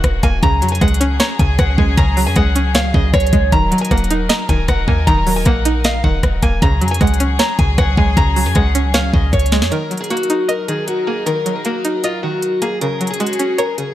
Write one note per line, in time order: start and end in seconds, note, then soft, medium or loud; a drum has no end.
0.00 0.23 D#1 loud
0.00 0.40 D#3 medium
0.00 0.43 D#3 medium
0.00 0.22 A#3 loud
0.00 0.40 A#3 medium
0.00 0.43 D#4 medium
0.00 0.40 F#4 medium
0.00 0.43 D#5 loud
0.00 0.21 F#5 medium
0.00 kick loud
0.00 closed hi-hat medium
0.04 cross-stick loud
0.23 0.42 D#1 loud
0.23 0.43 A#3 medium
0.23 0.39 G#5 medium
0.23 kick loud
0.23 closed hi-hat medium
0.43 0.64 C#2 loud
0.43 1.38 C#3 medium
0.43 6.58 F#3 medium
0.43 3.49 C#4 medium
0.43 3.49 G#4 medium
0.43 0.70 A#5 loud
0.43 kick loud
0.43 closed hi-hat medium
0.62 0.80 F2 loud
0.62 1.59 F#3 medium
0.62 closed hi-hat medium
0.68 0.80 G#5 medium
0.68 closed hi-hat medium
0.75 closed hi-hat medium
0.81 1.19 C#2 loud
0.81 1.77 G#3 medium
0.81 1.18 F#5 medium
0.81 kick loud
0.81 cross-stick medium
0.81 closed hi-hat medium
0.88 closed hi-hat medium
0.94 closed hi-hat medium
1.01 1.97 C#4 medium
1.01 closed hi-hat loud
1.20 2.17 C#5 loud
1.20 1.36 A#5 medium
1.20 snare loud
1.20 closed hi-hat medium
1.39 1.58 C#2 loud
1.39 1.96 C#3 medium
1.39 1.55 G#5 medium
1.39 kick loud
1.39 closed hi-hat medium
1.59 1.77 C#2 loud
1.59 1.75 F#5 medium
1.59 kick medium
1.59 cross-stick loud
1.59 closed hi-hat medium
1.78 1.97 C#2 loud
1.78 2.35 G#3 medium
1.78 1.94 G#5 medium
1.78 kick loud
1.97 2.28 C#2 loud
1.97 2.93 C#3 medium
1.97 2.25 A#5 loud
1.97 kick loud
1.97 closed hi-hat medium
2.17 3.14 F#3 medium
2.17 open hi-hat medium
2.27 2.36 F2 loud
2.27 2.35 G#5 medium
2.36 2.92 C#2 loud
2.36 3.32 G#3 medium
2.36 2.73 F#5 medium
2.36 kick loud
2.36 cross-stick medium
2.36 closed hi-hat medium
2.56 3.52 C#4 medium
2.56 closed hi-hat loud
2.75 3.52 C#5 medium
2.75 2.91 F5 medium
2.75 snare loud
2.75 closed hi-hat medium
2.94 3.13 C#2 loud
2.94 3.52 C#3 medium
2.94 3.10 D#5 medium
2.94 kick loud
3.13 3.32 C#2 loud
3.13 3.50 C#5 medium
3.13 kick medium
3.13 cross-stick loud
3.13 closed hi-hat medium
3.20 closed hi-hat medium
3.27 closed hi-hat medium
3.33 3.52 C#2 loud
3.33 3.52 G#3 medium
3.33 kick loud
3.33 closed hi-hat medium
3.52 3.71 D#1 loud
3.52 4.48 D#3 medium
3.52 6.59 D#4 medium
3.52 6.59 A#4 medium
3.52 3.80 A#5 loud
3.52 kick loud
3.52 closed hi-hat medium
3.71 4.68 F#3 medium
3.71 closed hi-hat medium
3.78 3.89 G#5 medium
3.78 closed hi-hat medium
3.85 closed hi-hat medium
3.91 4.28 D#1 loud
3.91 4.87 A#3 medium
3.91 4.27 F#5 medium
3.91 kick loud
3.91 cross-stick medium
3.91 closed hi-hat medium
3.98 closed hi-hat medium
4.04 closed hi-hat medium
4.11 5.07 D#4 medium
4.11 closed hi-hat loud
4.29 5.26 D#5 loud
4.29 4.46 A#5 medium
4.29 snare loud
4.29 closed hi-hat medium
4.49 4.68 C#1 loud
4.49 5.06 D#3 medium
4.49 4.65 G#5 medium
4.49 kick loud
4.49 closed hi-hat medium
4.68 4.87 D#1 loud
4.68 4.84 F#5 medium
4.68 kick medium
4.68 cross-stick loud
4.68 closed hi-hat medium
4.88 5.06 D#2 loud
4.88 5.45 A#3 medium
4.88 5.04 G#5 medium
4.88 kick loud
5.07 5.44 D#1 loud
5.07 6.03 D#3 medium
5.07 5.34 A#5 loud
5.07 kick loud
5.07 closed hi-hat medium
5.26 6.23 F#3 medium
5.26 open hi-hat medium
5.36 5.44 G#5 medium
5.45 6.02 A#1 loud
5.45 6.41 A#3 loud
5.45 5.82 F#5 medium
5.45 kick loud
5.45 cross-stick medium
5.45 closed hi-hat medium
5.65 6.62 D#4 medium
5.65 closed hi-hat loud
5.84 6.62 D#5 loud
5.84 6.01 F5 medium
5.84 snare loud
5.84 closed hi-hat medium
6.04 6.23 D#1 loud
6.04 6.62 D#3 medium
6.04 6.40 F#5 medium
6.04 kick loud
6.23 6.42 D#1 loud
6.23 kick medium
6.23 cross-stick loud
6.23 closed hi-hat medium
6.42 6.61 D#1 loud
6.42 6.62 A#3 medium
6.42 6.59 G#5 medium
6.42 kick loud
6.42 closed hi-hat medium
6.62 6.83 C#2 loud
6.62 7.58 C#3 loud
6.62 9.69 F#3 medium
6.62 9.69 C#4 medium
6.62 9.69 G#4 medium
6.62 6.89 A#5 loud
6.62 kick loud
6.62 closed hi-hat medium
6.81 7.00 F2 loud
6.81 7.78 F#3 medium
6.81 closed hi-hat medium
6.88 6.99 G#5 medium
6.88 closed hi-hat medium
6.94 closed hi-hat medium
7.01 7.38 C#2 loud
7.01 7.96 G#3 loud
7.01 7.37 F#5 medium
7.01 kick loud
7.01 cross-stick medium
7.01 closed hi-hat medium
7.07 closed hi-hat medium
7.14 closed hi-hat medium
7.20 8.17 C#4 medium
7.20 closed hi-hat loud
7.39 8.36 C#5 loud
7.39 7.55 A#5 medium
7.39 snare loud
7.39 closed hi-hat medium
7.59 7.77 C#2 loud
7.59 8.16 C#3 medium
7.59 7.75 G#5 medium
7.59 kick loud
7.59 closed hi-hat medium
7.78 7.97 C#2 loud
7.78 7.94 F#5 medium
7.78 kick medium
7.78 cross-stick loud
7.78 closed hi-hat medium
7.97 8.16 C#2 loud
7.97 8.54 G#3 medium
7.97 8.14 G#5 medium
7.97 kick loud
8.17 8.47 C#2 loud
8.17 9.12 C#3 medium
8.17 8.44 A#5 loud
8.17 kick loud
8.17 closed hi-hat medium
8.36 9.33 F#3 medium
8.36 open hi-hat medium
8.46 8.55 F2 loud
8.46 8.54 G#5 medium
8.55 9.11 C#2 loud
8.55 9.51 G#3 medium
8.55 8.92 F#5 medium
8.55 kick loud
8.55 cross-stick medium
8.55 closed hi-hat medium
8.75 9.72 C#4 medium
8.75 closed hi-hat loud
8.94 9.72 C#5 medium
8.94 9.10 F5 loud
8.94 snare loud
8.94 closed hi-hat medium
9.14 9.32 C#2 loud
9.14 9.72 C#3 medium
9.14 9.30 D#5 medium
9.14 kick loud
9.33 9.64 C#2 loud
9.33 9.69 C#5 medium
9.33 kick medium
9.33 closed hi-hat medium
9.39 closed hi-hat medium
9.46 closed hi-hat medium
9.52 9.72 G#3 medium
9.52 snare loud
9.52 closed hi-hat medium
9.62 9.71 F2 loud
9.62 snare loud
9.72 10.67 D#3 medium
9.72 13.94 F#3 medium
9.72 12.78 D#4 medium
9.72 9.99 A#4 loud
9.72 12.78 A#4 medium
9.72 closed hi-hat medium
9.91 10.88 F#3 medium
9.91 closed hi-hat medium
9.97 10.09 G#4 medium
9.97 closed hi-hat medium
10.04 closed hi-hat medium
10.10 11.06 A#3 medium
10.10 10.47 F#4 medium
10.10 closed hi-hat medium
10.17 closed hi-hat medium
10.23 closed hi-hat medium
10.30 11.27 D#4 medium
10.30 closed hi-hat loud
10.48 10.65 A#4 medium
10.48 11.46 D#5 loud
10.48 closed hi-hat medium
10.68 11.25 D#3 medium
10.68 10.84 G#4 medium
10.68 closed hi-hat medium
10.88 11.04 F#4 medium
10.88 closed hi-hat medium
11.07 11.65 A#3 medium
11.07 11.23 G#4 medium
11.26 12.22 D#3 medium
11.26 11.54 A#4 medium
11.26 closed hi-hat medium
11.46 12.43 F#3 medium
11.46 closed hi-hat medium
11.55 11.64 G#4 medium
11.65 12.61 A#3 loud
11.65 12.02 F#4 medium
11.65 closed hi-hat medium
11.85 12.81 D#4 medium
11.85 closed hi-hat loud
12.04 12.20 F4 medium
12.04 12.81 D#5 medium
12.04 closed hi-hat medium
12.23 12.82 D#3 medium
12.23 12.60 F#4 medium
12.42 closed hi-hat medium
12.62 12.81 A#3 medium
12.62 12.78 G#4 medium
12.62 closed hi-hat medium
12.81 13.77 C#3 medium
12.81 13.94 C#4 medium
12.81 13.94 G#4 medium
12.81 13.09 A#4 loud
12.81 closed hi-hat medium
13.00 13.94 F#3 medium
13.00 closed hi-hat medium
13.07 13.18 G#4 medium
13.07 closed hi-hat medium
13.14 closed hi-hat medium
13.20 13.94 G#3 medium
13.20 13.56 F#4 medium
13.20 closed hi-hat medium
13.26 closed hi-hat medium
13.33 closed hi-hat medium
13.39 13.94 C#4 medium
13.39 closed hi-hat loud
13.58 13.75 A#4 medium
13.58 13.94 C#5 loud
13.58 closed hi-hat medium
13.78 13.94 C#3 medium
13.78 13.94 G#4 medium
13.78 closed hi-hat medium